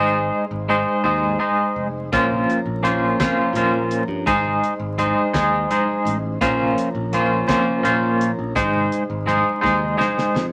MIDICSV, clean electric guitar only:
0, 0, Header, 1, 2, 480
1, 0, Start_track
1, 0, Tempo, 715137
1, 1425, Time_signature, 6, 3, 24, 8
1, 7062, End_track
2, 0, Start_track
2, 0, Title_t, "Clean electric guitar"
2, 0, Program_c, 0, 27
2, 0, Note_on_c, 0, 56, 80
2, 0, Note_on_c, 0, 63, 81
2, 0, Note_on_c, 0, 68, 87
2, 0, Note_on_c, 0, 72, 82
2, 295, Note_off_c, 0, 56, 0
2, 297, Note_off_c, 0, 63, 0
2, 298, Note_off_c, 0, 68, 0
2, 298, Note_off_c, 0, 72, 0
2, 461, Note_on_c, 0, 56, 67
2, 465, Note_on_c, 0, 63, 72
2, 469, Note_on_c, 0, 68, 78
2, 469, Note_on_c, 0, 72, 83
2, 689, Note_off_c, 0, 72, 0
2, 697, Note_off_c, 0, 68, 0
2, 697, Note_on_c, 0, 72, 79
2, 698, Note_off_c, 0, 56, 0
2, 698, Note_off_c, 0, 63, 0
2, 705, Note_on_c, 0, 68, 75
2, 706, Note_on_c, 0, 56, 66
2, 706, Note_on_c, 0, 63, 71
2, 927, Note_off_c, 0, 56, 0
2, 930, Note_off_c, 0, 68, 0
2, 931, Note_off_c, 0, 63, 0
2, 935, Note_off_c, 0, 72, 0
2, 935, Note_on_c, 0, 56, 70
2, 938, Note_on_c, 0, 68, 69
2, 939, Note_on_c, 0, 63, 65
2, 943, Note_on_c, 0, 72, 75
2, 1252, Note_off_c, 0, 56, 0
2, 1254, Note_off_c, 0, 63, 0
2, 1254, Note_off_c, 0, 68, 0
2, 1256, Note_off_c, 0, 72, 0
2, 1426, Note_on_c, 0, 58, 74
2, 1429, Note_on_c, 0, 61, 74
2, 1432, Note_on_c, 0, 65, 85
2, 1434, Note_on_c, 0, 72, 84
2, 1737, Note_off_c, 0, 58, 0
2, 1739, Note_off_c, 0, 61, 0
2, 1740, Note_off_c, 0, 65, 0
2, 1741, Note_off_c, 0, 72, 0
2, 1900, Note_on_c, 0, 58, 72
2, 1901, Note_on_c, 0, 61, 69
2, 1905, Note_on_c, 0, 65, 73
2, 1909, Note_on_c, 0, 72, 74
2, 2139, Note_off_c, 0, 72, 0
2, 2142, Note_off_c, 0, 58, 0
2, 2143, Note_off_c, 0, 61, 0
2, 2143, Note_off_c, 0, 65, 0
2, 2148, Note_on_c, 0, 72, 83
2, 2151, Note_on_c, 0, 65, 81
2, 2153, Note_on_c, 0, 61, 76
2, 2155, Note_on_c, 0, 58, 66
2, 2382, Note_off_c, 0, 58, 0
2, 2382, Note_off_c, 0, 61, 0
2, 2386, Note_off_c, 0, 72, 0
2, 2388, Note_off_c, 0, 65, 0
2, 2390, Note_on_c, 0, 58, 72
2, 2390, Note_on_c, 0, 61, 73
2, 2394, Note_on_c, 0, 72, 72
2, 2396, Note_on_c, 0, 65, 68
2, 2699, Note_off_c, 0, 58, 0
2, 2699, Note_off_c, 0, 61, 0
2, 2701, Note_off_c, 0, 72, 0
2, 2702, Note_off_c, 0, 65, 0
2, 2861, Note_on_c, 0, 56, 82
2, 2865, Note_on_c, 0, 63, 89
2, 2868, Note_on_c, 0, 72, 87
2, 2869, Note_on_c, 0, 68, 86
2, 3174, Note_off_c, 0, 56, 0
2, 3176, Note_off_c, 0, 63, 0
2, 3178, Note_off_c, 0, 68, 0
2, 3178, Note_off_c, 0, 72, 0
2, 3344, Note_on_c, 0, 56, 75
2, 3347, Note_on_c, 0, 63, 75
2, 3349, Note_on_c, 0, 68, 79
2, 3352, Note_on_c, 0, 72, 72
2, 3573, Note_off_c, 0, 72, 0
2, 3577, Note_off_c, 0, 68, 0
2, 3578, Note_off_c, 0, 63, 0
2, 3581, Note_on_c, 0, 72, 82
2, 3582, Note_off_c, 0, 56, 0
2, 3585, Note_on_c, 0, 68, 83
2, 3586, Note_on_c, 0, 63, 79
2, 3590, Note_on_c, 0, 56, 76
2, 3821, Note_off_c, 0, 56, 0
2, 3822, Note_off_c, 0, 72, 0
2, 3823, Note_off_c, 0, 63, 0
2, 3824, Note_off_c, 0, 68, 0
2, 3829, Note_on_c, 0, 56, 63
2, 3831, Note_on_c, 0, 63, 75
2, 3832, Note_on_c, 0, 68, 71
2, 3835, Note_on_c, 0, 72, 77
2, 4138, Note_off_c, 0, 56, 0
2, 4139, Note_off_c, 0, 63, 0
2, 4140, Note_off_c, 0, 68, 0
2, 4141, Note_off_c, 0, 72, 0
2, 4303, Note_on_c, 0, 58, 78
2, 4307, Note_on_c, 0, 65, 81
2, 4309, Note_on_c, 0, 61, 87
2, 4310, Note_on_c, 0, 72, 95
2, 4615, Note_off_c, 0, 58, 0
2, 4617, Note_off_c, 0, 65, 0
2, 4618, Note_off_c, 0, 61, 0
2, 4619, Note_off_c, 0, 72, 0
2, 4786, Note_on_c, 0, 58, 72
2, 4792, Note_on_c, 0, 61, 75
2, 4794, Note_on_c, 0, 65, 70
2, 4794, Note_on_c, 0, 72, 74
2, 5010, Note_off_c, 0, 72, 0
2, 5014, Note_off_c, 0, 61, 0
2, 5016, Note_off_c, 0, 65, 0
2, 5018, Note_on_c, 0, 72, 93
2, 5021, Note_off_c, 0, 58, 0
2, 5022, Note_on_c, 0, 61, 79
2, 5024, Note_on_c, 0, 65, 77
2, 5029, Note_on_c, 0, 58, 78
2, 5248, Note_off_c, 0, 58, 0
2, 5250, Note_off_c, 0, 61, 0
2, 5256, Note_on_c, 0, 58, 69
2, 5259, Note_off_c, 0, 65, 0
2, 5259, Note_on_c, 0, 61, 75
2, 5261, Note_off_c, 0, 72, 0
2, 5267, Note_on_c, 0, 65, 71
2, 5268, Note_on_c, 0, 72, 76
2, 5572, Note_off_c, 0, 58, 0
2, 5573, Note_off_c, 0, 61, 0
2, 5577, Note_off_c, 0, 65, 0
2, 5578, Note_off_c, 0, 72, 0
2, 5743, Note_on_c, 0, 56, 79
2, 5745, Note_on_c, 0, 68, 87
2, 5746, Note_on_c, 0, 63, 80
2, 5748, Note_on_c, 0, 72, 90
2, 6056, Note_off_c, 0, 56, 0
2, 6056, Note_off_c, 0, 68, 0
2, 6057, Note_off_c, 0, 63, 0
2, 6058, Note_off_c, 0, 72, 0
2, 6216, Note_on_c, 0, 56, 72
2, 6223, Note_on_c, 0, 68, 77
2, 6224, Note_on_c, 0, 63, 74
2, 6228, Note_on_c, 0, 72, 73
2, 6444, Note_off_c, 0, 72, 0
2, 6447, Note_off_c, 0, 68, 0
2, 6451, Note_off_c, 0, 63, 0
2, 6452, Note_on_c, 0, 72, 88
2, 6454, Note_off_c, 0, 56, 0
2, 6455, Note_on_c, 0, 68, 77
2, 6459, Note_on_c, 0, 63, 79
2, 6462, Note_on_c, 0, 56, 68
2, 6686, Note_off_c, 0, 56, 0
2, 6690, Note_off_c, 0, 68, 0
2, 6692, Note_off_c, 0, 63, 0
2, 6694, Note_on_c, 0, 56, 61
2, 6698, Note_off_c, 0, 72, 0
2, 6698, Note_on_c, 0, 68, 66
2, 6700, Note_on_c, 0, 63, 73
2, 6706, Note_on_c, 0, 72, 76
2, 7012, Note_off_c, 0, 56, 0
2, 7014, Note_off_c, 0, 68, 0
2, 7015, Note_off_c, 0, 63, 0
2, 7017, Note_off_c, 0, 72, 0
2, 7062, End_track
0, 0, End_of_file